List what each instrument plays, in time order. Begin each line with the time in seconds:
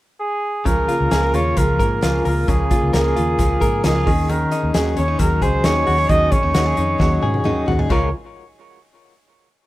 0.20 trumpet G#4
0.65 fingered electric bass C#2, steel-string acoustic guitar C#3 F3 A#3 F4 G#4, trumpet A#4, kick, closed hi-hat
0.88 steel-string acoustic guitar A#3 F4 G#4, closed hi-hat
1.00 fingered electric bass C#2
1.11 fingered electric bass C#2, steel-string acoustic guitar C#3 F3 A#3 F4 G#4, snare, closed hi-hat
1.23 clean electric guitar A#4
1.34 fingered electric bass D#2, steel-string acoustic guitar A#3 F4 G#4, trumpet C#5, closed hi-hat
1.57 fingered electric bass C#2, steel-string acoustic guitar F3 A#3 F4 G#4, trumpet A#4, kick, closed hi-hat
1.78 fingered electric bass G#2, steel-string acoustic guitar A#3 F4 G#4, clean electric guitar A#4, kick, closed hi-hat
2.01 fingered electric bass C#2, steel-string acoustic guitar C#3 F3 A#3 F4 G#4, snare, closed hi-hat
2.24 fingered electric bass C#2, steel-string acoustic guitar A#3 F4 G#4, clean electric guitar A#4, trumpet A#4, open hi-hat
2.47 fingered electric bass C#2, steel-string acoustic guitar C#3 F3 A#3 F4 G#4, trumpet G#4, kick, closed hi-hat
2.70 steel-string acoustic guitar A#3 F4 G#4, kick, closed hi-hat
2.83 fingered electric bass C#2
2.93 fingered electric bass C#2, steel-string acoustic guitar C#3 F3 A#3 F4 G#4, trumpet G#4, clean electric guitar A#4, snare, closed hi-hat
3.16 fingered electric bass D#2, steel-string acoustic guitar A#3 F4 G#4, closed hi-hat
3.38 fingered electric bass C#2, steel-string acoustic guitar F3 A#3 F4 G#4, kick, snare, closed hi-hat
3.60 fingered electric bass G#2, steel-string acoustic guitar A#3 F4 G#4, clean electric guitar A#4, kick, closed hi-hat
3.83 fingered electric bass C#2, steel-string acoustic guitar C#3 F3 A#3 F4 G#4, clean electric guitar D#4, trumpet G#4, snare, closed hi-hat
3.95 clean electric guitar F4
4.06 fingered electric bass D#2, clean electric guitar D#3, steel-string acoustic guitar C#4 D#4 G#4, kick, open hi-hat
4.28 steel-string acoustic guitar D#3 F#3 C#4 D#4 G#4, trumpet A#4, closed hi-hat
4.51 steel-string acoustic guitar C#4 D#4 G#4, closed hi-hat
4.63 fingered electric bass D#2
4.74 fingered electric bass D#2, steel-string acoustic guitar D#3 F#3 C#4 D#4 G#4, snare, closed hi-hat
4.96 fingered electric bass D#2, steel-string acoustic guitar C#4 D#4 G#4, trumpet C#5, closed hi-hat
5.08 clean electric guitar D#4
5.19 fingered electric bass D#2, steel-string acoustic guitar F#3 C#4 D#4 G#4, trumpet A#4, kick, closed hi-hat
5.42 fingered electric bass C#2, steel-string acoustic guitar C#4 D#4 G#4, trumpet C5, kick, closed hi-hat
5.64 fingered electric bass D#2, steel-string acoustic guitar D#3 F#3 C#4 D#4 G#4, trumpet C#5, snare, closed hi-hat
5.86 fingered electric bass D#2, steel-string acoustic guitar C#4 G#4, clean electric guitar F#4, open hi-hat
5.98 clean electric guitar G#4
6.09 fingered electric bass D#2, steel-string acoustic guitar D#3 F#3 C#4 D#4 G#4, trumpet D#5, kick, closed hi-hat
6.31 steel-string acoustic guitar C#4 D#4 G#4, trumpet C#5, kick, closed hi-hat
6.43 fingered electric bass D#2, clean electric guitar D#4
6.54 fingered electric bass D#2, steel-string acoustic guitar D#3 F#3 C#4 D#4 G#4, clean electric guitar F#4, snare, closed hi-hat
6.66 clean electric guitar G#4
6.76 fingered electric bass F2, steel-string acoustic guitar C#4 D#4 G#4, closed hi-hat
6.98 fingered electric bass D#2, steel-string acoustic guitar F#3 C#4 D#4 G#4, kick, snare
7.21 fingered electric bass G#2, steel-string acoustic guitar C#4 D#4 G#4, high tom
7.34 high tom
7.44 fingered electric bass D#2, steel-string acoustic guitar D#3 F#3 C#4 D#4 G#4, mid tom
7.66 fingered electric bass D#2, steel-string acoustic guitar C#4 D#4 G#4, clean electric guitar F#4, floor tom
7.79 clean electric guitar G#4, floor tom
7.89 fingered electric bass C#2, steel-string acoustic guitar C#3 F3 A#3 F4 G#4, clean electric guitar G#3 A#4, trumpet C#5, kick, crash